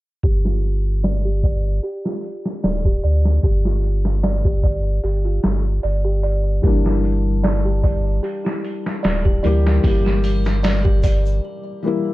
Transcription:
0.23 G1 G4, kick, open hi-hat
0.45 F4, snare
0.63 open hi-hat
1.03 D5, snare, open hi-hat
1.25 G4
1.43 D5, kick, open hi-hat
1.83 G4, open hi-hat
2.05 F4, snare
2.23 open hi-hat
2.46 snare
2.63 D1 D5, snare, open hi-hat
2.85 G4, kick
3.03 D2 D5, open hi-hat
3.25 snare
3.43 G1 G4, kick, open hi-hat
3.65 F4, snare
3.83 open hi-hat
4.05 snare
4.23 D5, snare, open hi-hat
4.45 G4, kick
4.63 D5, kick, open hi-hat
5.04 G1 G4, open hi-hat
5.25 F4, closed hi-hat
5.43 G1, snare, open hi-hat
5.83 G1 D5, open hi-hat
6.05 G4
6.23 D5, open hi-hat
6.62 G1 E3 G3 A#3 G4, kick, open hi-hat, shaker
6.67 D4
6.85 E4, snare
7.04 open hi-hat, triangle, shaker
7.27 shaker
7.43 D5, snare, open hi-hat, shaker
7.65 G4, triangle
7.83 D5, kick, open hi-hat, shaker
8.06 shaker
8.23 G4, open hi-hat, shaker
8.45 E4, snare
8.64 open hi-hat, shaker
8.86 snare, shaker
9.03 D1 D5, snare, open hi-hat, shaker
9.25 G4, kick
9.43 D2 E3 G3 A#3 G4 D5, open hi-hat, shaker
9.66 snare, shaker
9.82 G1 E3 G3 A#3 G4, kick, open hi-hat, shaker
9.87 G4
10.05 E4, snare
10.24 open hi-hat, triangle, shaker
10.45 snare, shaker
10.63 D5, snare, open hi-hat, shaker
10.84 G4, kick
11.03 D5, kick, open hi-hat, shaker
11.26 shaker
11.83 E3 G3 A#3
11.87 E4

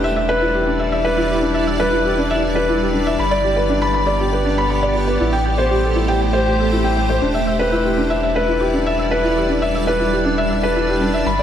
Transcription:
Already playing: E1 G3 D4 E4 G4 B4 D5 E5
0.04 E5
0.16 E5
0.29 B4
0.41 E4
0.54 G4
0.67 D4
0.79 E5
0.92 E5
1.05 B4
1.17 E4
1.29 G4
1.42 D4
1.54 E5
1.67 E5
1.80 B4
1.92 E4
2.05 G4
2.18 D4
2.31 E5
2.43 E5
2.55 B4
2.69 E4
2.81 G4
2.93 D4
3.07 E5
3.19 G1 B3 G4 B5
3.31 D5
3.44 G4
3.56 B4
3.69 D4
3.82 B5
3.94 B5
4.07 D5
4.20 G4
4.33 B4
4.45 D4
4.58 B5
4.70 B5
4.83 D5
4.95 G4
5.08 B4
5.20 A1 A3 E4 C5
5.33 G5
5.45 G5
5.58 C5
5.71 G4
5.83 A4
5.96 E4
6.08 G5
6.21 G5
6.33 C5
6.46 G4
6.59 A4
6.72 E4
6.84 G5
6.97 G5
7.10 C5
7.22 E1 G3 D4 E4 D5
7.34 E5
7.47 E5
7.59 B4
7.72 E4
7.85 G4
7.98 D4
8.10 E5
8.23 E5
8.36 B4
8.48 E4
8.61 G4
8.74 D4
8.86 E5
8.99 E5
9.11 B4
9.24 D4 E4
9.37 G4
9.49 D4
9.62 E5
9.75 E5
9.87 B4
10.00 E4
10.13 G4
10.25 D4
10.38 E5
10.51 E5
10.63 B4
10.76 E4
10.89 G4
11.01 D4
11.14 E5
11.26 G1 B5
11.39 D5

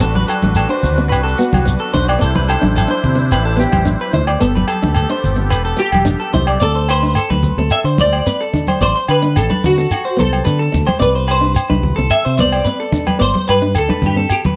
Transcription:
Already playing: D4 F#4
0.00 A1 C4 A4 B4, shekere
0.15 B4, high conga
0.28 A4, low agogo, shekere
0.42 A1 D4, high conga, shekere
0.55 A4, low agogo, shekere
0.69 D4 C5
0.83 D2, low conga, shekere
0.98 C4, shekere
1.09 C2 B4, low agogo, shekere
1.23 A4, shekere
1.38 B3 F#4, shekere
1.53 C2, high conga, low conga, low agogo, shekere
1.65 C4, shekere
1.80 A4
1.93 B1 D4 C5, low conga, shekere
2.08 D5, low agogo
2.19 C4 E4 A4 C5, shekere
2.23 C2
2.35 B4, high conga
2.49 A4, low agogo, shekere
2.61 A1 D4, high conga, shekere
2.76 A4, low agogo, shekere
2.88 D4 C5
3.04 C3, low conga
3.15 C4, shekere
3.32 A1 B4, low agogo, shekere
3.45 A4
3.57 B3 G4, shekere
3.72 A1, high conga, low conga, low agogo, shekere
3.85 D4, shekere
4.01 B4
4.13 D2 E4 C5, low conga, shekere
4.27 D5, low agogo
4.40 G1 B3 G4 A4, shekere
4.55 B4, high conga, shekere
4.68 A4, low agogo, shekere
4.82 D2 D4, high conga
4.95 A4, low agogo, shekere
5.10 D4 C5, shekere
5.24 G1, low conga, shekere
5.36 C4, shekere
5.50 E1 B4, low agogo, shekere
5.65 A4, shekere
5.77 G4, muted nylon-string guitar stroke, shekere
5.92 E1, high conga, low agogo, shekere
6.05 D4, shekere
6.20 A4, shekere
6.33 C2 E4 C5, high conga, low conga, shekere
6.47 D5, low agogo, shekere
6.60 D2 C4 A4 D5, shekere
6.75 C5, shekere
6.89 B4 C5, low agogo, shekere
7.03 D4, shekere
7.15 A4, low agogo, shekere
7.30 D2 D4 B4, high conga
7.43 low conga, shekere
7.57 D2 C4 A4, shekere
7.70 E5, low agogo, shekere
7.84 D3 C5, shekere
7.98 D2 C5 D5, high conga, shekere
8.13 low agogo
8.26 C4 B4, shekere
8.41 A4, shekere
8.53 D4, low conga, shekere
8.67 C5, high conga, low agogo
8.81 A1 C4 C5 D5, shekere
8.96 C5, shekere
9.08 D3 B4, low agogo, shekere
9.22 D4, shekere
9.36 A1 A4, low agogo, shekere
9.50 D4 B4, high conga
9.64 D3 F#4, low conga, shekere
9.77 C4 A4, shekere
9.91 F#4, low agogo, shekere
10.05 C5, shekere
10.17 C2 B3 A4 C5, high conga, shekere
10.33 low agogo
10.45 D3 C4 B4, shekere
10.59 A4, shekere
10.72 D2 D4, low conga, shekere
10.87 C5, high conga, low agogo
10.99 C2 C4 B4 D5, shekere
11.15 C5, shekere
11.28 B4 C5, low agogo, shekere
11.41 D4, shekere
11.55 muted clean electric guitar stroke, low agogo, shekere
11.70 C2 D4 B4, high conga
11.83 low conga
11.96 C2 C4 A4, shekere
12.10 E5, low agogo, shekere
12.24 C3 C5, shekere
12.37 C2 B3 C5 D5, high conga, shekere
12.52 low agogo
12.65 C4 B4, shekere
12.80 A4, shekere
12.92 D4, low conga, shekere
13.07 B4, high conga, low agogo
13.19 G1 B3 C5 D5, shekere
13.34 C5, high conga, shekere
13.48 G2 B4, low agogo, shekere
13.62 D4, shekere
13.75 D2 A4, low agogo, shekere
13.88 D4 B4, high conga, shekere
14.02 G2, low conga, shekere
14.06 G4
14.16 C4 A4, shekere
14.30 G4, low agogo, shekere
14.44 B4, high conga, low conga, shekere

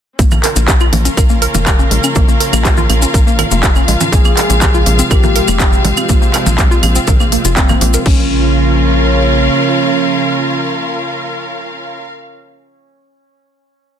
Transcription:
0.19 A#1 C#3 F3 A#3 C#4 F4, kick, closed hi-hat, maracas
0.31 A#3, low conga, claves, maracas
0.37 F4 A#4
0.44 A#4, clap, open hi-hat
0.56 A#1 A#3, closed hi-hat, maracas
0.68 G4, kick, clap, closed hi-hat, maracas
0.80 F4, claves, maracas
0.93 A#1 A#3, open hi-hat, low conga
1.05 C#4 F5, closed hi-hat, maracas
1.17 A#1 A#4, kick, closed hi-hat, claves, maracas
1.29 A#3, maracas
1.42 A#4, open hi-hat
1.55 F1 A#3, closed hi-hat, low conga, maracas
1.67 G4, kick, clap, closed hi-hat, claves, maracas
1.79 C#4, maracas
1.91 A#1 G#3, open hi-hat
2.04 C#4, closed hi-hat, claves, maracas
2.15 A#1 A#3, kick, closed hi-hat, low conga, maracas
2.28 A#3, maracas
2.40 A#4, open hi-hat
2.53 A#1 A#3, closed hi-hat, claves, maracas
2.65 G4, kick, clap, closed hi-hat, maracas
2.77 F4, low conga, maracas
2.90 A#1 A#3, open hi-hat, claves
3.02 C#4, closed hi-hat, maracas
3.14 A#1 A#4, kick, closed hi-hat, maracas
3.27 A#3, maracas
3.39 A#4, open hi-hat, low conga, claves
3.51 F1 A#3, closed hi-hat, maracas
3.63 G4, kick, clap, closed hi-hat, maracas
3.75 C#4, claves, maracas
3.88 A#1 G#3, open hi-hat
4.00 C#4, closed hi-hat, low conga, maracas
4.12 A#1 C3 G#3 A#3 C4 G#4, kick, closed hi-hat, maracas
4.25 A#3, claves, maracas
4.35 G#3 A#4, clap, open hi-hat
4.50 A#1 A#3, closed hi-hat, maracas
4.61 G4, kick, clap, closed hi-hat, low conga, claves, maracas
4.74 F4, maracas
4.86 A#1 A#3, open hi-hat
4.99 C4, closed hi-hat, maracas
5.11 A#1 G4 A#4, kick, closed hi-hat, claves, maracas
5.23 A#3, low conga, maracas
5.36 A#4, open hi-hat
5.48 F1 A#3, closed hi-hat, claves, maracas
5.60 G4, kick, clap, closed hi-hat, maracas
5.73 C4, maracas
5.85 A#1 G#3, open hi-hat, low conga
5.97 C4, closed hi-hat, claves, maracas
6.09 A#1 A#3, kick, closed hi-hat, maracas
6.22 A#3, maracas
6.34 A#4, clap, open hi-hat, claves
6.46 A#1 A#3, closed hi-hat, low conga, maracas
6.58 G4, kick, clap, closed hi-hat, maracas
6.71 F4, maracas
6.83 A#1 A#3, open hi-hat, claves
6.95 C4, closed hi-hat, maracas
7.07 A#1 A#4, kick, closed hi-hat, low conga, maracas
7.20 A#3, claves, maracas
7.32 A#3, open hi-hat
7.45 F1 F4, closed hi-hat, maracas
7.57 C4 A#4, kick, clap, closed hi-hat, maracas
7.69 A#3, low conga, claves, maracas
7.81 A#1 A#3, open hi-hat
7.93 A#4, closed hi-hat, maracas
8.06 A#1 C#3 F3 A#3 C#4 F4, kick, crash
8.13 F4
8.21 A#4
8.28 F5

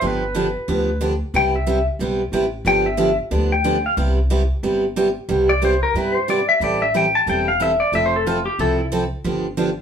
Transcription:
0.01 G1 D3 F3 B3 D4 G4
0.07 B4
0.35 D3 F3 B3 D4 G4
0.68 D2 D3 F3 B3 D4 G4
1.01 D3 F3 B3 D4 G4
1.34 C2 C3 G3 B3 E4 G4 G5
1.56 E5
1.67 C3 G3 B3 E4 G4
1.99 B1 C3 G3 B3 E4 G4
2.32 A1 C3 G3 B3 E4 G4
2.65 G1 D3 F3 B3 D4 G4 G5
2.86 E5
2.97 D3 F3 B3 D4 G4
3.31 D2 D3 F3 B3 D4 G4
3.52 G5
3.64 D3 F3 B3 D4 G4
3.86 F5
3.97 C2 C3 G3 B3 E4 G4
4.30 C3 G3 B3 E4 G4
4.63 G1 C3 G3 B3 E4 G4
4.96 C3 G3 B3 E4 G4
5.29 C2 C3 G3 B3 E4 G4
5.49 D5
5.62 C3 G3 B3 E4 G4 C5
5.83 A#4
5.94 G2 C3 G3 B3 E4 G4 B4
6.16 C5
6.28 C3 G3 B3 E4 G4 D5
6.49 E5
6.60 A1 E3 G3 C4 E4 A4 D5
6.82 E5
6.94 E3 G3 C4 E4 A4 G5
7.15 A5
7.26 E1 E3 G3 C4 E4 A4 G5
7.48 F5
7.60 E3 G3 C4 E4 A4 E5
7.80 D5
7.92 F1 F3 C4 E4 A4 E5
8.06 C5
8.16 A4
8.27 F3 C4 E4 F4 A4
8.46 G4
8.59 C2 F3 C4 E4 A4
8.78 E4
8.92 F3 C4 E4 A4
9.24 G1 D3 F3 B3 D4 G4
9.57 D3 F3 B3 D4 G4

